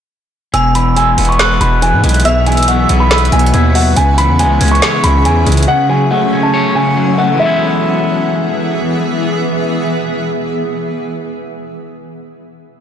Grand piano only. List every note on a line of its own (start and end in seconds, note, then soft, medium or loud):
0.54 0.71 G#5 loud
0.75 0.93 B5 medium
0.97 1.27 G#5 medium
1.29 1.59 C#6 medium
1.61 1.78 B5 medium
1.82 2.00 G#5 medium
2.25 2.43 E5 loud
2.47 2.64 G#5 medium
2.68 2.98 F#5 medium
3.00 3.30 B5 medium
3.32 3.72 G#5 medium
3.75 3.93 F#5 medium
3.96 4.14 G#5 loud
4.18 4.35 B5 medium
4.39 4.70 G#5 medium
4.71 5.02 C#6 medium
5.04 5.21 B5 medium
5.25 5.43 G#5 medium
5.68 5.85 F#5 loud
5.90 6.07 G#5 medium
6.11 6.41 F#5 medium
6.43 6.73 A5 medium
6.75 7.15 G#5 medium
7.18 7.35 F#5 medium
7.40 8.64 E5 medium